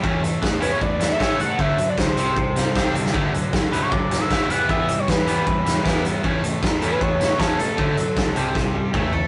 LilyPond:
<<
  \new Staff \with { instrumentName = "Analog synth lead" } { \time 4/4 \key d \major \tempo 4 = 155 r4. b'16 cis''16 d''8. e''8. fis''8 | e''8. d''16 c''2~ c''8 r8 | r4. b'16 cis''16 d''8. e''8. fis''8 | e''8. cis''16 b'2~ b'8 r8 |
r4. a'16 b'16 cis''4 a'4~ | a'2. r4 | }
  \new Staff \with { instrumentName = "Distorted electric guitar" } { \clef bass \time 4/4 \key d \major e8 a8 b8 e'8 b8 e'8 cis''8 a'8 | d8 fis8 d8 c8 c8 g8 d'8 c'8 | d8 fis8 d8 fis8 d8 fis8 e'8 e8 | e8 g8 e8 g8 e8 g8 e'8 b8 |
e8 a8 b8 e'8 b8 e'8 cis''8 a'8 | d8 fis8 d8 c8 c8 g8 a8 a'8 | }
  \new Staff \with { instrumentName = "Overdriven electric guitar" } { \clef bass \time 4/4 \key d \major <e a cis'>8 <e a>8 <e a>8 <e a cis'>8 <e a>8 <e a>8 <e a cis'>8 <e a>8 | <d fis a>8 <d fis>8 <d fis>8 <c g c'>8 <c g>8 <c g>8 <c g c'>8 <c g>8 | <d fis a>8 <d fis>8 <d fis>8 <d fis a>8 <d fis>8 <d fis>8 <d fis a>8 <e g b>8 | <e g b>8 <e g>8 <e g>8 <e g b>8 <e g>8 <e g>8 <e g b>8 <e g>8 |
<e a cis'>8 <e a>8 <e a>8 <e a cis'>8 <e a>8 <e a>8 <e a cis'>8 <e a>8 | <d fis a>8 <d fis>8 <d fis>8 <c g c'>8 <c g>8 <c g>8 <a, e a>8 <a, e>8 | }
  \new Staff \with { instrumentName = "Picked electric bass" } { \clef bass \time 4/4 \key d \major e,4 e,4 e,4 a,,8 r8 | d,8 r8 cis,8 c,4. c,8 d,8 | d,4 d,4 d,4 d,16 r16 e,8~ | e,4 e,4 e,4 e,4 |
e,4 e,4 e,4 e,8 r8 | d,8 r8 cis,8 c,4. a,,4 | }
  \new DrumStaff \with { instrumentName = "Drums" } \drummode { \time 4/4 bd8 hh8 <bd sn>8 hh8 bd8 <hh sn>8 <bd sn>8 hh8 | bd8 hh8 <bd sn>8 hh8 bd8 <hh sn>8 <bd sn>8 hh16 sn16 | bd8 hh8 <bd sn>8 hh8 bd8 <hh sn>8 <bd sn>8 hh8 | bd8 hh8 <bd sn>8 hh8 bd8 <hh sn>8 <bd sn>8 hh8 |
bd8 hh8 <bd sn>8 hh8 bd8 <hh sn>8 <bd sn>8 hh8 | bd8 hh8 <bd sn>8 hh8 <bd sn>4 <bd toml>8 tomfh8 | }
>>